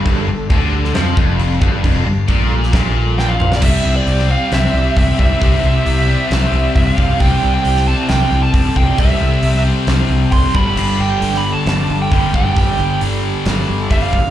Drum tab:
CC |x---x---x---x---|x---x---x-------|x---------------|----------------|
HH |----------------|----------------|----o---o---o---|o---o---o---o---|
SD |-------oo-------|-------oo---o--o|-----o--o-------|--------o-------|
T2 |----------------|--------------o-|----------------|----------------|
BD |o---o-----o---o-|o---o---o-------|o-----------o-o-|o-----------o-o-|

CC |----------------|----------------|x---------------|----------------|
HH |o---o---o---o---|o---o---o---o---|----o---o---o---|o---o---o---o---|
SD |-----o--o-------|-----o--o-------|-----o--o-------|--------o-------|
T2 |----------------|----------------|----------------|----------------|
BD |o-----------o-o-|o-----------o-o-|------------o-o-|o-----------o-o-|